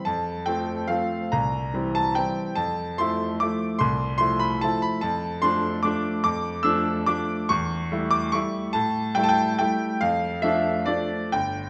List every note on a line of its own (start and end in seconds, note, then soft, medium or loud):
0.05 0.45 F2 medium
0.05 0.45 A5 medium
0.46 0.85 F3 soft
0.46 0.85 A3 soft
0.46 0.86 C4 soft
0.46 0.89 G5 medium
0.88 1.29 F3 soft
0.88 1.29 A3 soft
0.88 1.30 C4 soft
0.88 1.32 F5 medium
1.32 1.73 C2 medium
1.32 1.95 A#5 medium
1.74 2.12 E3 soft
1.74 2.13 G3 soft
1.74 2.13 C4 soft
1.95 2.16 A5 medium
2.15 2.53 E3 soft
2.15 2.53 G3 soft
2.15 2.53 C4 soft
2.15 2.56 G5 medium
2.56 2.96 F2 medium
2.56 2.97 A5 medium
2.98 3.37 F3 soft
2.98 3.37 A3 soft
2.98 3.37 E4 soft
2.98 3.40 C6 medium
3.40 3.77 F3 soft
3.40 3.77 A3 soft
3.40 3.77 E4 soft
3.40 3.80 D6 medium
3.79 4.18 C2 medium
3.79 4.16 C6 medium
4.18 4.58 F3 soft
4.18 4.58 A3 soft
4.18 4.58 E4 medium
4.18 4.40 C6 loud
4.39 4.61 B5 medium
4.61 4.99 F3 soft
4.61 4.99 A3 soft
4.61 5.00 E4 soft
4.61 4.82 A5 medium
4.82 5.02 B5 medium
5.01 5.42 F2 medium
5.01 5.43 A5 medium
5.42 5.80 F3 soft
5.42 5.80 A3 soft
5.42 5.80 D4 soft
5.42 5.83 C6 medium
5.83 6.20 F3 soft
5.83 6.21 A3 soft
5.83 6.21 D4 soft
5.83 6.22 D6 medium
6.24 6.64 F2 medium
6.24 6.65 D6 medium
6.63 7.03 F3 soft
6.63 7.03 A3 soft
6.63 7.04 D4 medium
6.63 7.07 E6 medium
7.06 7.46 F3 soft
7.06 7.47 A3 soft
7.06 7.46 D4 soft
7.06 7.50 D6 medium
7.49 7.90 E2 medium
7.49 8.12 C#6 loud
7.92 8.30 G3 soft
7.92 8.30 A3 soft
7.92 8.31 E4 soft
8.11 8.33 D6 medium
8.32 8.71 G3 soft
8.32 8.71 A3 soft
8.32 8.71 E4 soft
8.32 8.74 C#6 medium
8.73 9.15 A2 medium
8.73 9.15 A5 medium
9.15 9.55 G3 soft
9.15 9.55 A3 soft
9.15 9.56 E4 medium
9.15 9.23 G5 loud
9.23 9.30 A5 medium
9.29 9.57 G5 medium
9.59 9.98 G3 soft
9.59 9.98 A3 soft
9.59 9.99 E4 soft
9.59 10.01 G5 medium
10.01 10.42 F2 medium
10.01 10.43 F5 medium
10.42 10.82 F3 soft
10.42 10.82 A3 soft
10.42 10.83 D4 medium
10.42 10.86 E5 medium
10.86 11.29 F3 soft
10.86 11.29 A3 soft
10.86 11.29 D4 soft
10.86 11.32 D5 medium
11.32 11.70 G1 medium
11.32 11.70 G5 medium